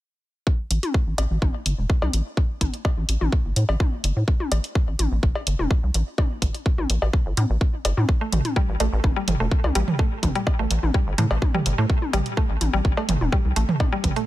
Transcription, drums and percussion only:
0.47 kick loud
0.71 open hi-hat medium
0.83 open hi-hat soft
0.83 high tom soft
0.94 kick loud
1.18 open hi-hat medium
1.18 cowbell medium
1.42 kick loud
1.42 high tom soft
1.66 open hi-hat medium
1.90 kick loud
2.02 high tom soft
2.02 cowbell medium
2.13 open hi-hat medium
2.37 kick loud
2.61 kick medium
2.61 open hi-hat medium
2.61 high tom soft
2.74 open hi-hat soft
2.85 kick loud
2.85 cowbell medium
3.09 open hi-hat medium
3.21 high tom soft
3.32 kick loud
3.56 open hi-hat medium
3.69 cowbell medium
3.80 kick loud
3.80 high tom soft
4.04 open hi-hat medium
4.28 kick loud
4.40 high tom soft
4.52 open hi-hat medium
4.52 cowbell medium
4.64 open hi-hat soft
4.75 kick loud
4.99 open hi-hat medium
4.99 high tom soft
5.23 kick loud
5.35 cowbell medium
5.47 open hi-hat medium
5.59 high tom soft
5.71 kick loud
5.94 open hi-hat medium
6.18 kick loud
6.18 high tom soft
6.18 cowbell medium
6.42 kick medium
6.42 open hi-hat medium
6.54 open hi-hat soft
6.66 kick loud
6.78 high tom soft
6.90 open hi-hat medium
7.02 cowbell medium
7.13 kick loud
7.37 open hi-hat medium
7.37 high tom soft
7.61 kick loud
7.85 open hi-hat medium
7.85 cowbell medium
7.97 high tom soft
8.09 kick loud
8.32 mid tom medium
8.32 open hi-hat medium
8.45 open hi-hat soft
8.45 high tom soft
8.56 kick loud
8.80 open hi-hat medium
8.80 cowbell medium
9.04 kick loud
9.04 high tom soft
9.28 mid tom medium
9.28 open hi-hat medium
9.51 kick loud
9.64 high tom soft
9.64 cowbell medium
9.75 open hi-hat medium
9.88 mid tom medium
9.99 kick loud
10.23 kick medium
10.23 mid tom medium
10.23 open hi-hat medium
10.23 high tom soft
10.35 open hi-hat soft
10.47 kick loud
10.47 cowbell medium
10.71 open hi-hat medium
10.83 high tom soft
10.94 kick loud
11.18 mid tom medium
11.18 open hi-hat medium
11.31 cowbell medium
11.42 kick loud
11.42 high tom soft
11.54 mid tom medium
11.66 open hi-hat medium
11.90 kick loud
12.02 high tom soft
12.13 mid tom medium
12.13 open hi-hat medium
12.13 cowbell medium
12.26 open hi-hat soft
12.37 kick loud
12.61 open hi-hat medium
12.61 high tom soft
12.85 kick loud
12.97 cowbell medium
13.09 mid tom medium
13.09 open hi-hat medium
13.21 high tom soft
13.32 kick loud
13.56 open hi-hat medium
13.69 mid tom medium
13.80 kick loud
13.80 high tom soft
13.80 cowbell medium
14.04 kick medium
14.04 mid tom medium
14.04 open hi-hat medium
14.16 open hi-hat soft

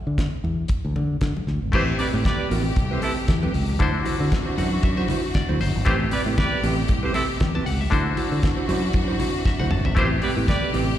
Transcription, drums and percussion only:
0.18 kick loud
0.18 snare loud
0.18 closed hi-hat medium
0.18 high conga medium
0.45 muted conga soft
0.68 kick loud
0.68 closed hi-hat medium
0.96 muted conga medium
0.96 low conga medium
1.21 kick loud
1.21 snare loud
1.21 closed hi-hat medium
1.21 high conga medium
1.37 high conga medium
1.47 snare soft
1.73 kick loud
1.73 crash loud
1.73 muted conga medium
1.99 open hi-hat medium
1.99 muted conga medium
2.25 kick loud
2.25 snare loud
2.25 closed hi-hat medium
2.25 high conga medium
2.51 open hi-hat medium
2.76 kick loud
2.76 closed hi-hat medium
3.02 open hi-hat medium
3.02 muted conga medium
3.28 kick loud
3.28 snare loud
3.28 closed hi-hat medium
3.28 high conga medium
3.43 high conga medium
3.54 open hi-hat medium
3.70 high conga medium
3.80 kick loud
3.80 closed hi-hat medium
3.80 muted conga medium
4.05 open hi-hat medium
4.05 muted conga medium
4.32 kick loud
4.32 snare loud
4.32 closed hi-hat medium
4.32 high conga medium
4.58 open hi-hat medium
4.83 kick loud
4.83 closed hi-hat medium
5.08 open hi-hat medium
5.08 muted conga medium
5.08 low conga medium
5.34 kick loud
5.34 snare loud
5.34 closed hi-hat medium
5.34 high conga medium
5.49 high conga medium
5.61 snare soft
5.61 open hi-hat medium
5.75 high conga soft
5.85 kick loud
5.85 closed hi-hat medium
5.85 muted conga medium
6.11 open hi-hat medium
6.11 muted conga medium
6.38 kick loud
6.38 snare loud
6.38 closed hi-hat medium
6.38 high conga loud
6.64 open hi-hat medium
6.88 kick loud
6.88 closed hi-hat medium
7.14 open hi-hat medium
7.14 muted conga medium
7.40 kick loud
7.40 snare loud
7.40 closed hi-hat medium
7.40 high conga medium
7.55 high conga medium
7.66 open hi-hat medium
7.81 high conga soft
7.91 kick loud
7.91 closed hi-hat medium
7.91 muted conga medium
8.17 open hi-hat medium
8.17 muted conga medium
8.43 kick loud
8.43 snare loud
8.43 closed hi-hat medium
8.43 high conga medium
8.69 open hi-hat medium
8.93 kick loud
8.93 closed hi-hat medium
9.19 open hi-hat medium
9.19 muted conga medium
9.19 low conga medium
9.45 kick loud
9.45 snare medium
9.45 high conga medium
9.60 high tom medium
9.60 high conga medium
9.71 mid tom loud
9.85 floor tom loud
9.85 high conga soft
9.97 kick loud
9.97 closed hi-hat medium
9.97 muted conga medium
10.22 open hi-hat medium
10.22 muted conga medium
10.48 kick loud
10.48 snare loud
10.48 closed hi-hat medium
10.48 high conga medium
10.74 open hi-hat medium
10.74 muted conga soft

